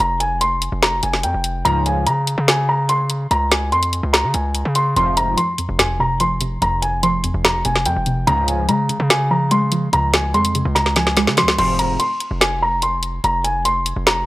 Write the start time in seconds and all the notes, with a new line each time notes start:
0.00 F1 A#5
0.20 G#5, closed hi-hat
0.41 C6, closed hi-hat
0.62 closed hi-hat
0.72 F1
0.83 A#5, snare, closed hi-hat
1.03 F1 G#5, closed hi-hat
1.13 snare
1.23 F2 G5, closed hi-hat
1.34 F1
1.44 closed hi-hat
1.65 C#2 G#2 C#3 F3 A#5, closed hi-hat
1.86 G#5, closed hi-hat
2.07 C#3 A#5, closed hi-hat
2.27 closed hi-hat
2.38 C#3
2.48 G#5, snare, closed hi-hat
2.69 A#5
2.89 C6, closed hi-hat
3.10 closed hi-hat
3.31 C#2 A#5, closed hi-hat
3.51 G#5, snare, closed hi-hat
3.72 F2 C6, closed hi-hat
3.83 closed hi-hat
3.93 closed hi-hat
4.03 C#2
4.13 A#5, snare, closed hi-hat
4.24 C#3
4.34 C#2 G#5, closed hi-hat
4.55 closed hi-hat
4.65 C#3
4.75 C6, closed hi-hat
4.96 F1 F2 G#2 C3 F3 C6, closed hi-hat
5.17 A#5, closed hi-hat
5.37 F3 C6, closed hi-hat
5.58 F2, closed hi-hat
5.69 F1
5.79 F2 G#5, snare, closed hi-hat
6.00 C3 A#5
6.20 F3 C6, closed hi-hat
6.41 C3, closed hi-hat
6.62 F1 F2 A#5, closed hi-hat
6.82 G#5, closed hi-hat
7.03 F3 C6, closed hi-hat
7.24 F2, closed hi-hat
7.34 F1
7.45 F2 A#5, snare, closed hi-hat
7.65 F1 C3 G#5, closed hi-hat
7.76 snare
7.85 F2 F3 G5, closed hi-hat
7.96 F1
8.06 C3, closed hi-hat
8.27 C#2 G#2 C#3 F3 A#5, closed hi-hat
8.48 G#5, closed hi-hat
8.69 C#3 G#3 A#5, closed hi-hat
8.89 C#3, closed hi-hat
9.00 C#3
9.10 C#3 G#5, snare, closed hi-hat
9.31 F3 A#5
9.51 G#3 C6, closed hi-hat
9.72 F3, closed hi-hat
9.93 C#2 C#3 A#5, closed hi-hat
10.14 G#5, snare, closed hi-hat
10.34 F2 G#3 C6, closed hi-hat
10.45 closed hi-hat
10.55 C#3, closed hi-hat
10.65 C#2
10.75 C#3 A#5, snare, closed hi-hat
10.86 snare
10.96 F3 G#5, snare, closed hi-hat
11.07 snare
11.17 G#3, snare, closed hi-hat
11.27 C#3, snare
11.37 F3 C6, snare, closed hi-hat
11.43 C#2
11.48 snare
11.58 F1 G#2 C3 F3 C6, closed hi-hat, crash
11.79 A#5, closed hi-hat
11.99 C6, closed hi-hat
12.20 closed hi-hat
12.31 F1
12.41 G#5, snare, closed hi-hat
12.62 A#5
12.82 C6, closed hi-hat
13.03 closed hi-hat
13.24 F1 A#5, closed hi-hat
13.44 G#5, closed hi-hat
13.65 C6, closed hi-hat
13.86 closed hi-hat
13.96 F1
14.07 A#5, snare, closed hi-hat